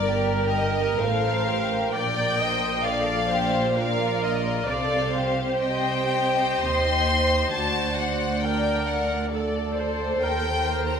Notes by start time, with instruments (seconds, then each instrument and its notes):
Already playing: double bass section G1, cello section G2, viola section A#4, violin section D5
0.07 violin section G4 A#4
0.53 violin section D#5
1.00 double bass section A1, cello section A2, violin section A4 C5 F5
1.48 violin section G4
1.93 double bass section A#1, cello section A#2, violin section A#4 D5 G5, viola section D5
2.41 violin section C5, viola section D#5
2.84 violin section A4 D5 F5, viola section D5
3.31 violin section G4, viola section C5
3.77 violin section F4 D5 F5, viola section A#4
4.23 violin section D#5
4.67 double bass section C2, cello section C3, violin section A4 C5 F5, viola section D5
5.14 violin section G4, viola section C5
5.61 violin section D#5 G5
6.12 violin section D#5
6.63 double bass section D#2, cello section D#2, violin section C6
7.53 cello section D2, double bass section D2, violin section F#4 D5 A5
7.99 violin section F#5
8.44 violin section D4 G5, viola section A#4
8.87 violin section F#5
9.31 violin section A4 D5, viola section A4
9.77 viola section C5
10.20 double bass section D#2, cello section D#2, viola section A#4, violin section C5 G5
10.87 violin section A#5